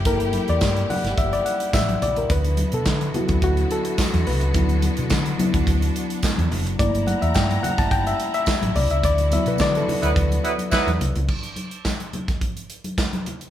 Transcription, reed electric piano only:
X:1
M:4/4
L:1/16
Q:1/4=107
K:D
V:1 name="Reed electric piano"
_B3 d3 f2 e d f2 e2 d B | B3 A3 F2 F2 A4 B2- | B2 z12 z2 | d2 f e g2 f a g e2 e3 d e |
d2 e B d A2 B6 z3 | z16 |]
V:2 name="Reed electric piano"
[_B,EA]16 | z6 [F,B,E]6 z4 | [F,B,E]2 z4 [F,B,E]8- [F,B,E]2 | [A,_B,E]16 |
z2 [F,B,E]2 z12 | z16 |]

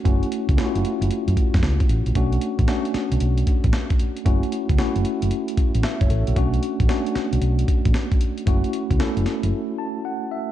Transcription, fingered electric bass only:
X:1
M:4/4
L:1/16
Q:"Swing 16ths" 1/4=114
K:Bm
V:1 name="Fingered electric bass" clef=bass
F,,, z2 C,, z F,,, z F,,, z F,, z F,, C,, z A,,, ^A,,, | B,,,2 z A,,, z3 B,,, B,,,2 z A,,, z4 | F,,, z2 C,, z F,,, z F,,, z3 A,,, z F,,, A,,, ^A,,, | B,,,2 z A,,, z3 B,,, B,,,2 z A,,, z4 |
F,,, z2 C,, z F,,, z F,,, z8 |]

